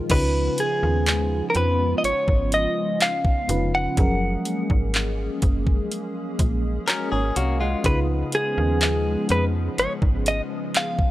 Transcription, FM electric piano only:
0.00 0.12 A#2 medium
0.00 0.11 G#3 medium
0.00 0.10 D#4 medium
0.00 0.11 F4 medium
0.00 0.11 G#4 medium
0.00 0.12 A#4 medium
0.09 1.54 C#3 medium
0.09 1.54 C#4 medium
0.09 1.55 D#4 medium
0.09 1.55 F4 medium
0.09 1.55 B4 medium
3.48 3.85 C#3 medium
3.48 3.85 C#4 medium
3.48 3.85 D#4 medium
3.48 3.86 F4 medium
3.48 3.86 B4 medium
3.97 5.42 F3 medium
3.97 5.41 F#3 medium
3.97 5.42 C#4 medium
3.97 5.42 G#4 medium
3.97 5.43 A#4 medium
6.88 7.11 F#4 medium
6.88 7.11 A#4 medium
7.13 7.35 A#4 medium
7.13 7.35 C#5 medium
7.36 7.59 C#5 medium
7.36 7.59 F5 medium
7.61 8.07 D#5 medium
7.61 8.06 F#5 medium
7.84 9.28 C#3 medium
7.84 9.29 G#3 medium
7.84 9.29 D#4 medium
7.84 9.29 F4 medium
7.84 9.30 B4 medium

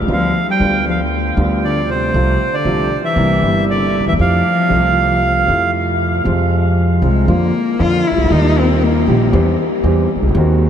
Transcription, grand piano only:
0.03 0.09 C#2 medium
0.09 0.30 D2 medium
0.09 0.30 D3 medium
0.09 0.30 G3 medium
0.09 0.31 B3 medium
0.09 0.31 F4 medium
0.59 1.34 D2 medium
0.59 1.34 D3 medium
0.59 1.33 G3 soft
0.59 1.34 B3 soft
0.59 1.35 F4 medium
1.36 2.11 D2 medium
1.36 2.11 D3 medium
1.36 2.10 G3 medium
1.36 2.11 B3 soft
1.36 2.12 F4 medium
2.14 2.36 C2 medium
2.14 2.36 C3 medium
2.14 2.36 F3 medium
2.14 2.36 A3 medium
2.14 2.36 F4 medium
2.66 2.87 C2 medium
2.66 2.87 C3 medium
2.66 2.87 F3 medium
2.66 2.87 A3 medium
2.66 2.87 F4 medium
3.17 3.38 C2 medium
3.17 3.38 C3 medium
3.17 3.38 G3 medium
3.17 3.39 A#3 medium
3.17 3.39 E4 medium
3.42 4.16 G1 medium
3.42 4.16 G2 medium
3.42 4.15 C3 medium
3.42 4.16 G3 soft
3.42 4.16 A#3 soft
3.42 4.17 E4 medium
4.01 4.07 D2 soft
4.07 4.13 D#2 soft
4.13 4.19 E2 medium
4.19 4.41 F2 medium
4.19 4.41 C3 medium
4.19 4.41 F3 medium
4.19 4.41 A3 soft
4.19 4.41 E4 medium
4.69 5.44 C2 medium
4.69 5.44 C3 medium
4.69 5.44 F3 soft
4.69 5.45 A3 soft
4.73 5.45 F4 medium
5.46 6.22 F2 medium
5.46 6.21 C3 soft
5.46 6.22 F3 medium
5.46 6.22 A3 soft
5.50 6.23 E4 medium
6.24 6.99 F2 medium
6.24 6.98 C3 medium
6.24 6.99 F3 medium
6.24 7.00 G#3 medium
6.28 7.00 F4 medium
7.02 7.24 C2 medium
7.02 7.25 C3 medium
7.02 7.24 F3 medium
7.02 7.25 G#3 medium
7.02 7.25 F4 medium
7.28 7.50 F2 medium
7.28 7.50 D3 medium
7.28 7.50 F3 medium
7.28 7.50 A#3 medium
7.28 7.50 F4 medium
7.79 8.02 F2 medium
7.79 8.01 D3 medium
7.79 8.01 F3 medium
7.79 8.01 A#3 medium
7.79 8.02 F4 medium
8.12 8.18 C2 soft
8.18 8.25 C#2 medium
8.24 8.31 D2 medium
8.29 9.04 D#2 medium
8.29 8.31 D#3 medium
8.29 9.04 D#3 medium
8.29 9.04 G3 medium
8.29 9.04 A#3 medium
8.29 9.05 G4 medium
9.07 9.29 A#1 medium
9.07 9.29 A#2 medium
9.07 9.29 D#3 medium
9.07 9.29 G3 medium
9.07 9.29 A#3 medium
9.07 9.29 G4 medium
9.32 9.55 E2 medium
9.32 9.55 E3 medium
9.32 9.54 G3 medium
9.32 9.55 C4 medium
9.32 9.55 G4 medium
9.84 10.06 E2 medium
9.84 10.06 E3 medium
9.84 10.06 G3 medium
9.84 10.06 C4 medium
9.84 10.06 G4 medium
10.17 10.23 C2 soft
10.23 10.29 C#2 medium
10.30 10.36 D2 medium
10.34 10.70 D#2 medium
10.34 10.36 D#3 medium
10.34 10.70 D#3 medium
10.34 10.70 G#3 medium
10.34 10.70 C4 medium
10.38 10.70 F#4 medium

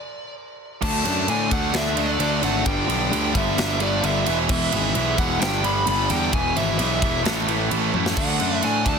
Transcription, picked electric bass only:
0.82 1.04 D2 medium
1.06 1.27 F#2 medium
1.28 1.50 A2 loud
1.52 1.73 D2 medium
1.73 2.18 D2 medium
2.19 2.42 D2 loud
2.42 2.65 G#1 medium
2.66 2.87 G1 medium
2.88 3.10 B1 medium
3.11 3.34 D2 loud
3.35 3.57 G1 medium
3.58 4.02 G1 loud
4.03 4.25 G1 loud
4.27 4.49 E1 loud
4.49 4.71 E1 loud
4.73 4.95 G#1 loud
4.95 5.17 B1 medium
5.18 5.40 E1 medium
5.40 5.85 G1 medium
5.87 6.09 G1 loud
6.11 6.32 E2 medium
6.33 6.55 E1 medium
6.56 6.78 G#1 medium
6.79 7.01 B1 medium
7.02 7.24 E1 medium
7.25 7.69 A1 medium
7.71 7.93 A1 medium
7.94 8.16 F#2 medium
8.17 8.39 D2 medium
8.41 8.62 F#2 medium
8.64 8.85 A2 loud
8.86 8.99 D2 medium

